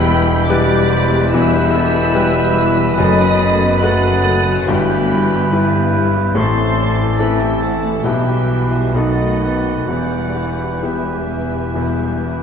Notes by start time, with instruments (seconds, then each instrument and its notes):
Already playing: grand piano E1 E2, double bass section E1, cello section E2, bassoon B2, french horn section G3 E4, clarinet B4, trumpet section B4, oboe E5, violin section G5 B5, flute section G6
0.06 viola section E3 E4
0.28 viola section G3 G4
0.49 viola section E3 E4, grand piano G3 G4 B4, oboe B4, clarinet D5, violin section B5 D6
0.69 viola section G3 G4
0.92 viola section E3 E4, oboe C5
1.12 viola section G3 G4
1.31 grand piano E1 E2, bassoon B2, viola section E3 E4, oboe B4, clarinet E5, violin section B5 E6, flute section G6
1.53 viola section G3 G4
1.72 viola section E3 E4, oboe A4
1.94 viola section G3 G4
2.13 viola section E3 E4, grand piano G3 G4 B4, oboe B4
2.34 viola section G3 G4
2.55 viola section E3 E4
2.77 viola section G3 G4
2.98 double bass section F#1, grand piano F#1 F#2, cello section F#2, bassoon B2, french horn section A3 F#4, viola section A3 A4, clarinet D#5, violin section B5 D#6, flute section A6
3.20 viola section B3 B4
3.42 viola section A3 A4
3.63 viola section B3 B4
3.82 bassoon B2, grand piano A3 F#4 B4, viola section A3 A4, oboe B4, clarinet F#5, violin section D#6 F#6, flute section A6
4.04 viola section B3 B4
4.25 viola section A3 A4
4.46 viola section B3 B4
4.66 double bass section G1, grand piano G1 G2, cello section G2, bassoon E3, viola section G3 E4, clarinet B4, trumpet section B4, violin section G5 B5, flute section G6
4.90 viola section B3 G4
5.12 viola section G3 E4
5.32 viola section B3 G4
5.51 grand piano G3 E4 B4, french horn section G3 E4, viola section G3 E4
5.76 viola section B3 G4
5.96 viola section G3 E4
6.17 viola section B3 G4
6.34 grand piano A1 A2, double bass section A1, cello section A2, bassoon E3, french horn section A3, viola section C4, trumpet section A4, clarinet C5, oboe C5, violin section A5 C6, flute section A6
6.38 viola section E4
6.59 viola section A3 C4
6.78 viola section C4 E4, oboe D5
7.00 viola section A3 C4
7.19 grand piano C4 E4 A4, viola section C4 E4, clarinet B4, oboe E5, violin section G5 B5
7.41 viola section A3 C4, clarinet G4, violin section E5 G5
7.61 viola section C4 E4, clarinet A4, violin section F#5 A5
7.86 viola section A3 C4
8.03 grand piano B1 B2 B3 E4 G4, double bass section B1, cello section B2, bassoon E3, french horn section G3, clarinet G4, trumpet section B4, oboe B4, violin section E5 G5, flute section B5
8.08 viola section E3 E4
8.29 viola section G3 G4
8.52 viola section E3 E4
8.71 viola section G3 G4, clarinet E4, violin section C5 E5
8.92 grand piano B1 B2 B3 D#4 A4, bassoon D#3, french horn section A3 D#4, viola section B3, clarinet F#4, oboe D#5, violin section D#5 F#5
8.97 viola section D#4, flute section A6
9.20 viola section A3 F#4
9.42 viola section B3 D#4, oboe B4
9.66 viola section A3 F#4
9.87 grand piano E1 E2, double bass section E1, cello section E2, bassoon E3, viola section E3 E4, french horn section G3, clarinet F#4, oboe B4, violin section D5 F#5, flute section G6
10.12 viola section G3 G4
10.36 viola section E3 E4
10.61 viola section G3 G4
10.82 bassoon E3, viola section E3 E4, grand piano B3 E4 G4, clarinet E4, violin section B4 E5, flute section G6
11.06 viola section G3 G4
11.29 viola section E3 E4
11.51 viola section G3 G4
11.75 grand piano E1 E2, viola section E3 E4
11.99 viola section G3 G4
12.23 viola section E3 E4